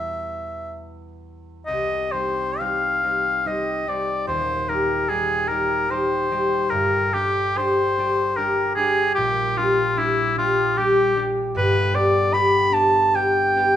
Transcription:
Already playing: E2 G3 B3 B4 E5
1.66 C2 D#5
2.12 G3 D#4 C5
2.59 G3 D#4 C5 F5
3.03 G3 D#4 C5
3.45 G3 D#4 C5 D#5
3.87 G3 D#4 C5 D5
4.27 D#1 D#2 C5
4.69 G3 D#4 G4 A#4
5.09 G3 D#4 G4 G#4
5.48 G3 D#4 G4 A#4
5.90 G3 D#4 G4 C5
6.31 G3 D#4 G4
6.70 G1 G2 A#4
7.13 G3 D4 G4
7.58 G3 D4 G4 C5
7.98 G3 D4 G4
8.36 G3 D4 G4 A#4
8.75 G3 D4 G#4
8.81 G4
9.15 A#1 A#2 G4
9.57 G3 D4 F4 G4
9.97 G3 D4 E4 G4
10.37 G3 D4 F4 G4
10.77 G3 D4 G4
11.15 G3 D4 G4
11.55 G1 G2 B4
11.94 B3 D4 G4 D5
12.33 B3 D4 G4 B5
12.72 B3 D4 G4 A5
13.14 B3 D4 G4 G5
13.56 B3 D4 G4

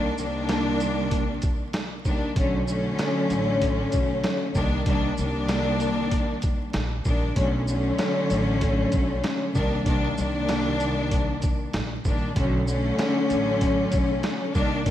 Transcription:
Already playing: C2 D#3 G3 A#3 D4
0.18 C2 D#3 G3 A#3 D4, shaker
0.49 cross-stick, snare, closed hi-hat
0.80 closed hi-hat, shaker
1.11 kick, closed hi-hat
1.42 kick, closed hi-hat, shaker
1.73 cross-stick, snare, closed hi-hat
2.05 C2 D#3 G3 A#3 D4, kick, shaker
2.35 B1 D3 F#3 A3 C#4, kick, closed hi-hat
2.67 D3 F#3 A3 C#4, shaker
2.99 cross-stick, snare, closed hi-hat
3.30 A1, closed hi-hat, shaker
3.62 kick, closed hi-hat
3.92 B1, kick, closed hi-hat, shaker
4.24 cross-stick, snare, closed hi-hat
4.54 C2 D#3 G3 A#3 D4, kick, shaker
4.86 C2 D#3 G3 A#3 D4, kick, closed hi-hat
5.18 C2 D#3 G3 A#3 D4, shaker
5.48 cross-stick, snare, closed hi-hat
5.80 closed hi-hat, shaker
6.11 kick, closed hi-hat
6.42 kick, closed hi-hat, shaker
6.73 A#1, cross-stick, snare, closed hi-hat
7.05 A#1 C2 D#3 G3 A#3 D4, kick, shaker
7.36 B1 D3 F#3 A3 C#4, kick, closed hi-hat
7.68 D3 F#3 A3 C#4, shaker
7.98 cross-stick, snare, closed hi-hat
8.30 A1, closed hi-hat, shaker
8.61 kick, closed hi-hat
8.92 B1, kick, closed hi-hat, shaker
9.24 cross-stick, snare, closed hi-hat
9.55 C2 D#3 G3 A#3 D4, kick, shaker
9.86 C2 D#3 G3 A#3 D4, kick, closed hi-hat
10.18 C2 D#3 G3 A#3 D4, shaker
10.49 cross-stick, snare, closed hi-hat
10.80 closed hi-hat, shaker
11.11 kick, closed hi-hat
11.42 kick, closed hi-hat, shaker
11.73 A#1, cross-stick, snare, closed hi-hat
12.05 A#1 C2 D#3 G3 A#3 D4, kick, shaker
12.35 B1 D3 F#3 A3 C#4, kick, closed hi-hat
12.67 D3 F#3 A3 C#4, shaker
12.98 cross-stick, snare, closed hi-hat
13.30 A1, closed hi-hat, shaker
13.61 kick, closed hi-hat
13.92 B1, kick, closed hi-hat, shaker
14.23 cross-stick, snare, closed hi-hat
14.53 C2 D#3 G3 A#3 D4, kick, shaker
14.86 D#3 G3 A#3, kick, closed hi-hat

